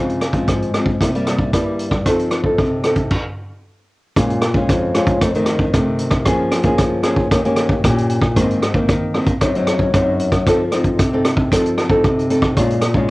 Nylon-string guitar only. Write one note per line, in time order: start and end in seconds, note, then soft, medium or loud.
0.00 0.45 C#3 medium
0.00 0.20 F3 medium
0.00 0.20 G#3 soft
0.00 0.20 C4 medium
0.33 0.69 F3 medium
0.33 0.70 G#3 soft
0.33 0.70 C4 medium
0.48 0.98 G#2 medium
0.74 0.91 F3 medium
0.74 0.92 G#3 medium
0.74 0.92 C4 medium
1.01 1.51 C3 medium
1.01 1.09 G3 soft
1.01 1.09 A#3 soft
1.01 1.09 E4 medium
1.15 1.50 G3 medium
1.15 1.50 A#3 medium
1.15 1.50 E4 medium
1.54 2.04 G2 medium
1.54 1.88 G3 soft
1.54 1.88 A#3 medium
1.54 1.88 E4 medium
2.06 2.57 F3 medium
2.06 2.42 C4 soft
2.06 2.42 D#4 medium
2.06 2.42 A4 medium
2.45 2.80 C4 soft
2.45 2.81 D#4 medium
2.45 2.81 A4 medium
2.60 3.09 C3 medium
2.85 3.10 C4 medium
2.85 3.10 D#4 medium
2.85 3.10 A4 medium
4.17 4.67 A#2 medium
4.17 4.41 G#3 medium
4.17 4.42 C#4 medium
4.17 4.42 F4 medium
4.55 4.91 G#3 medium
4.55 4.91 C#4 medium
4.55 4.91 F4 medium
4.70 5.20 F2 medium
4.95 5.20 G#3 medium
4.95 5.20 C#4 medium
4.95 5.20 F4 medium
5.22 5.72 F2 medium
5.22 5.31 D#3 medium
5.22 5.31 A3 soft
5.22 5.31 C4 medium
5.35 5.70 D#3 medium
5.35 5.71 A3 medium
5.35 5.71 C4 medium
5.74 6.24 C3 medium
5.74 6.23 D#3 soft
5.74 6.23 A3 medium
5.74 6.23 C4 medium
6.27 6.77 F3 medium
6.27 6.62 A#3 medium
6.27 6.62 C#4 medium
6.27 6.63 G#4 medium
6.64 7.00 A#3 medium
6.64 7.01 C#4 medium
6.64 7.01 G#4 medium
6.79 7.29 F3 medium
7.04 7.29 A#3 medium
7.04 7.29 C#4 medium
7.04 7.30 G#4 medium
7.32 7.82 D#3 medium
7.32 7.40 A#3 medium
7.32 7.40 C#4 soft
7.32 7.40 G4 medium
7.45 7.80 A#3 medium
7.45 7.80 C#4 medium
7.45 7.81 G4 medium
7.84 8.34 A#2 medium
7.84 8.18 A#3 soft
7.84 8.19 C#4 medium
7.84 8.19 G4 medium
8.36 8.87 G#2 medium
8.36 8.61 D#3 medium
8.36 8.62 A#3 medium
8.36 8.62 C4 medium
8.74 8.88 D#3 medium
8.74 9.11 A#3 medium
8.74 9.11 C4 medium
8.90 9.14 D#3 medium
9.15 9.32 D#3 medium
9.15 9.33 A#3 medium
9.15 9.33 C4 medium
9.41 9.92 F#2 medium
9.41 9.51 F#3 soft
9.41 9.51 C4 medium
9.41 9.51 D#4 medium
9.56 9.91 F#3 medium
9.56 9.91 C4 medium
9.56 9.91 D#4 medium
9.95 10.45 F#2 medium
9.95 10.29 F#3 medium
9.95 10.29 C4 medium
9.95 10.29 D#4 medium
10.47 10.97 F3 medium
10.47 10.63 C4 medium
10.47 10.63 D#4 medium
10.47 10.63 A4 medium
10.73 11.08 C4 medium
10.73 11.08 D#4 medium
10.73 11.09 A4 medium
10.99 11.50 C3 medium
11.13 11.48 C4 medium
11.13 11.48 D#4 medium
11.13 11.49 A4 medium
11.52 12.02 F3 medium
11.52 11.87 C4 medium
11.52 11.88 D#4 soft
11.52 11.88 A4 medium
11.90 12.26 C4 medium
11.90 12.26 D#4 medium
11.90 12.27 A4 medium
12.05 12.55 C3 medium
12.30 12.53 C4 medium
12.30 12.53 D#4 medium
12.30 12.53 A4 medium
12.57 13.07 A#2 medium
12.57 12.82 G#3 soft
12.57 12.82 C#4 soft
12.57 12.82 F4 medium
12.95 13.10 G#3 medium
12.95 13.10 C#4 medium
12.95 13.10 F4 medium